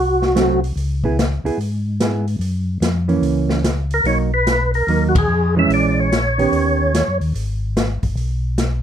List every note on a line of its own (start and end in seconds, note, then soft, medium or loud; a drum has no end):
0.00 0.72 C2 medium
0.00 0.60 F#4 medium
0.22 snare soft
0.35 0.59 F#3 medium
0.35 0.60 A3 medium
0.35 0.60 C4 medium
0.35 snare medium
0.35 closed hi-hat soft
0.64 open hi-hat soft
0.76 1.40 C#2 medium
0.76 open hi-hat soft
1.04 1.16 B3 medium
1.04 1.17 E4 medium
1.04 1.17 G#4 medium
1.04 kick soft
1.19 snare medium
1.19 closed hi-hat soft
1.44 1.51 C#2 soft
1.44 1.57 B3 medium
1.44 1.57 E4 medium
1.44 1.58 G#4 medium
1.44 open hi-hat soft
1.57 2.36 G#2 medium
1.57 open hi-hat soft
2.00 2.24 B3 medium
2.00 2.25 E4 soft
2.00 2.25 G#4 medium
2.00 snare medium
2.00 closed hi-hat medium
2.28 open hi-hat soft
2.39 2.78 F#2 medium
2.39 open hi-hat soft
2.80 3.19 F2 medium
2.80 snare medium
2.80 closed hi-hat medium
3.08 3.61 E3 medium
3.08 3.61 A#3 medium
3.08 3.61 C#4 medium
3.08 open hi-hat soft
3.21 4.00 C#2 medium
3.21 open hi-hat soft
3.49 snare medium
3.64 snare medium
3.64 closed hi-hat medium
3.91 4.06 A#4 medium
3.91 open hi-hat soft
4.04 4.83 B1 medium
4.04 4.30 F#3 soft
4.04 4.30 A#3 soft
4.04 4.30 D#4 medium
4.04 4.18 C#5 medium
4.04 open hi-hat soft
4.34 4.71 B4 loud
4.47 snare medium
4.47 closed hi-hat medium
4.74 5.04 A#4 medium
4.74 open hi-hat soft
4.87 5.26 D#2 medium
4.87 5.12 F#3 medium
4.87 5.13 A#3 medium
4.87 5.13 D#4 medium
4.87 open hi-hat soft
5.09 5.16 F#4 medium
5.15 5.55 G#4 medium
5.15 kick medium
5.15 ride medium
5.28 5.67 F2 medium
5.56 6.08 E3 medium
5.56 6.09 G#3 medium
5.56 6.09 C#4 medium
5.56 5.72 E5 medium
5.69 6.48 A#1 medium
5.69 open hi-hat soft
5.74 6.00 D5 loud
6.00 7.18 C#5 medium
6.12 snare medium
6.12 closed hi-hat medium
6.38 6.91 D#3 medium
6.38 6.91 B3 medium
6.38 6.91 C#4 medium
6.38 6.91 G4 medium
6.38 open hi-hat soft
6.52 7.03 D#2 medium
6.52 open hi-hat soft
6.94 snare medium
6.94 closed hi-hat medium
7.08 7.20 F#2 medium
7.20 7.33 D#2 medium
7.20 open hi-hat soft
7.35 7.99 G#1 medium
7.35 open hi-hat soft
7.77 snare medium
7.77 closed hi-hat medium
8.02 8.16 G1 medium
8.02 kick soft
8.02 open hi-hat soft
8.15 8.82 B1 medium
8.15 open hi-hat soft
8.58 snare medium
8.58 closed hi-hat medium